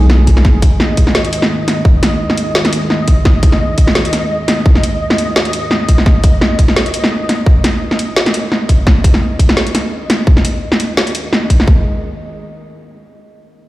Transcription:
Already playing: B1 D#3 G#3 G#4 G#5
0.10 snare
0.27 kick, closed hi-hat
0.37 snare
0.45 D#5, kick, snare
0.62 kick, closed hi-hat
0.80 snare
0.97 kick, closed hi-hat
1.07 snare
1.15 snare
1.25 closed hi-hat
1.33 closed hi-hat
1.42 snare
1.68 snare, closed hi-hat
1.85 kick
2.03 snare, closed hi-hat
2.30 snare
2.38 closed hi-hat
2.55 snare
2.65 snare, closed hi-hat
2.73 closed hi-hat
2.90 snare
3.08 kick, closed hi-hat
3.25 kick, snare
3.43 kick, closed hi-hat
3.52 snare
3.78 kick, closed hi-hat
3.87 snare
3.95 snare
4.05 closed hi-hat
4.13 snare, closed hi-hat
4.48 snare, closed hi-hat
4.66 kick
4.75 snare
4.83 closed hi-hat
5.10 snare
5.18 closed hi-hat
5.36 snare
5.45 closed hi-hat
5.53 closed hi-hat
5.71 snare
5.89 kick, closed hi-hat
5.98 snare
6.06 A#4, kick, snare
6.24 kick, closed hi-hat
6.41 snare
6.59 kick, closed hi-hat
6.68 snare
6.76 snare
6.86 closed hi-hat
6.94 closed hi-hat
7.04 snare
7.29 snare, closed hi-hat
7.46 kick
7.64 snare, closed hi-hat
7.91 snare
7.99 closed hi-hat
8.16 snare
8.26 snare, closed hi-hat
8.34 closed hi-hat
8.52 snare
8.69 kick, closed hi-hat
8.87 kick, snare
9.04 kick, closed hi-hat
9.14 snare
9.39 kick, closed hi-hat
9.49 snare
9.57 snare
9.67 closed hi-hat
9.75 snare, closed hi-hat
10.10 snare, closed hi-hat
10.27 kick
10.37 snare
10.45 closed hi-hat
10.72 snare
10.80 closed hi-hat
10.97 snare
11.07 closed hi-hat
11.15 closed hi-hat
11.33 snare
11.50 kick, closed hi-hat
11.60 snare
11.67 D#3 G#3 G#4 D#5, kick

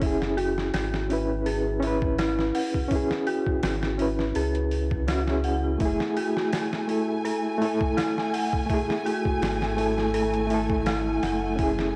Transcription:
Already playing: F#1
0.00 C#4 E4, kick, open hi-hat
0.06 G#4
0.22 snare
0.37 F#4, open hi-hat
0.58 snare
0.74 G#1 F#4, snare, open hi-hat
0.94 snare
1.09 C#4 E4 B4, open hi-hat
1.46 G#4, open hi-hat
1.80 C#4 E4, open hi-hat
1.87 B4
2.02 kick
2.18 E4, snare, open hi-hat
2.39 snare
2.55 F#5, open hi-hat
2.74 kick
2.88 C#4 E4, kick, open hi-hat
2.96 G#4
3.11 snare
3.27 F#4, open hi-hat
3.47 kick
3.63 G#1 F#4, snare, open hi-hat
3.83 snare
3.98 C#4 E4 B4, open hi-hat
4.19 snare
4.35 C#2 G#4, open hi-hat
4.55 closed hi-hat
4.71 open hi-hat
4.91 kick
5.07 C#4 E4 F#4, snare, open hi-hat
5.27 C#4 E4 G#4, snare
5.44 F#5, open hi-hat
5.78 F#1 A3 E4 G#5, kick, open hi-hat
5.86 G#4
6.00 snare
6.17 F#4, open hi-hat
6.37 snare
6.53 F#4, snare, open hi-hat
6.73 snare
6.88 A3 E4 A4, open hi-hat
7.25 A4, open hi-hat
7.58 A3 E4, open hi-hat
7.65 A4
7.81 kick
7.97 E4, snare, open hi-hat
8.18 snare
8.33 F#5, open hi-hat
8.53 kick
8.66 A3 E4, kick, open hi-hat
8.74 G#4
8.90 snare
9.06 F#4, open hi-hat
9.25 kick
9.42 G#1 F#4, snare, open hi-hat
9.62 snare
9.77 A3 E4 A4, open hi-hat
9.98 snare
10.14 A4, open hi-hat
10.34 closed hi-hat
10.47 A3 E4, open hi-hat
10.54 A4
10.70 kick
10.86 E4, snare, open hi-hat
11.23 F#1 F#5, snare, open hi-hat
11.56 C#4 E4, kick, open hi-hat
11.63 G#4
11.79 snare

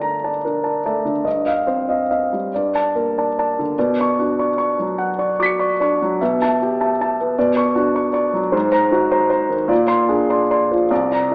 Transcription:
Already playing: G2 D3 A3 D4 A#4 D5 A5
0.02 A#5
0.24 D5 A5
0.45 D4 A#4
0.64 D5 A5
0.85 A3 D5 A5
1.05 D3
1.24 G2 D#5
1.46 D#5 F5
1.67 C4 C5
1.89 D#5 F5
2.11 D#5 F5
2.33 G3
2.55 G2 D5
2.75 D5 A5
2.95 A#3 A#4
3.18 D5 A5
3.39 D5 A5
3.59 D3
3.79 B2 D5
4.00 D5 C#6
4.19 D4 F#4
4.39 D5 C#6
4.58 D5 C#6
4.79 F#3
4.98 F#5
5.18 D5 C#6
5.39 F#4 D6 B6
5.46 C#7
5.59 D5 C#6
5.80 D4 D5 C#6
6.02 F#3
6.21 B2 E5
6.42 E5 A5
6.62 G4
6.81 E5 A5
7.01 E5 A5
7.21 B3
7.38 B2 D5
7.55 D5 C#6
7.75 D4 F#4
7.95 D5 C#6
8.13 D5 C#6
8.33 F#3
8.52 G#2 C5
8.72 C5 A#5
8.91 D#4 F#4
9.12 C5 A#5
9.30 C5 A#5
9.49 D#3
9.68 A#2 D5
9.87 D5 C6
10.09 D4 G#4
10.30 D5 C6
10.51 D5 C6
10.71 F3
10.91 C2 D5
11.12 D5 A#5
11.31 D4 E4

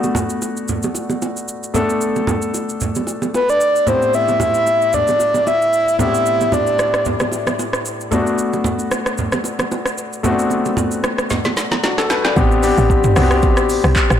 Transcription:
Already playing: A3 B3 D4 F#4
0.04 low bongo, shaker
0.15 high bongo, low conga, shaker
0.30 shaker
0.42 high bongo, shaker
0.57 shaker
0.68 low conga, shaker
0.83 low bongo, shaker
0.95 high bongo, shaker
1.10 low bongo, shaker
1.22 high bongo, shaker
1.37 shaker
1.48 shaker
1.63 shaker
1.74 A3 B3 D4 A4, low conga, shaker
1.90 shaker
2.01 shaker
2.16 low bongo, shaker
2.27 high bongo, low conga, shaker
2.42 shaker
2.54 high bongo, shaker
2.69 shaker
2.81 low conga, shaker
2.95 low bongo, shaker
3.07 high bongo, shaker
3.22 low bongo, shaker
3.34 B4, high bongo, shaker
3.49 D5, shaker
3.61 shaker
3.76 shaker
3.86 A2 B3 C4 D4 E4 G4 C5, low conga, shaker
4.02 shaker
4.14 E5, shaker
4.28 low bongo, shaker
4.40 E5, high bongo, low conga, shaker
4.54 shaker
4.67 high bongo, shaker
4.82 shaker
4.93 D5, low conga, shaker
5.08 low bongo, shaker
5.19 high bongo, shaker
5.34 low bongo, shaker
5.47 E5, high bongo, shaker
5.62 shaker
5.73 shaker
5.88 shaker
5.99 A2 B3 C4 D4 E4 G4 E5, low conga, shaker
6.15 shaker
6.26 shaker
6.41 low bongo, shaker
6.52 D5, high bongo, low conga, shaker
6.67 shaker
6.79 cross-stick, high bongo, shaker
6.94 cross-stick, shaker
7.05 low conga, shaker
7.20 cross-stick, low bongo, shaker
7.32 high bongo, shaker
7.47 cross-stick, low bongo, shaker
7.59 high bongo, shaker
7.73 cross-stick, shaker
7.85 shaker
8.01 shaker
8.11 A3 B3 D4 F#4, low conga, shaker
8.27 shaker
8.38 shaker
8.53 low bongo, shaker
8.64 high bongo, low conga, shaker
8.79 shaker
8.91 cross-stick, high bongo, shaker
9.06 cross-stick, shaker
9.18 low conga, shaker
9.32 cross-stick, low bongo, shaker
9.44 high bongo, shaker
9.59 cross-stick, low bongo, shaker
9.72 high bongo, shaker
9.86 cross-stick, shaker
9.98 shaker
10.13 shaker
10.23 A3 B3 C4 F#4, low conga, shaker
10.31 D4
10.39 shaker
10.50 low bongo, shaker
10.65 low bongo, shaker
10.77 high bongo, low conga, shaker
10.91 shaker
11.04 cross-stick, high bongo, shaker
11.18 cross-stick, shaker
11.30 snare, low conga, shaker
11.45 snare, low bongo, shaker
11.56 snare, high bongo, shaker
11.71 snare, low bongo, shaker
11.84 D4 F#4, snare, high bongo, shaker
11.98 F#4 A4, snare, shaker
12.10 B4, snare, shaker
12.25 B4 D5, snare, shaker
12.36 A1 B3 C4 D4 G4, kick, shaker
12.51 shaker
12.63 B3 C4 D4 G4, open hi-hat, shaker
12.78 A1, shaker
12.90 kick, shaker
13.04 mid tom, shaker
13.16 C2 B3 C4 D4 F#4, cross-stick, open hi-hat, shaker
13.23 G4
13.31 cross-stick, shaker
13.42 A1, kick, shaker
13.57 cross-stick, shaker
13.70 open hi-hat, shaker
13.84 C2, cross-stick, shaker
13.96 kick, clap, shaker
14.10 A1, cross-stick, shaker

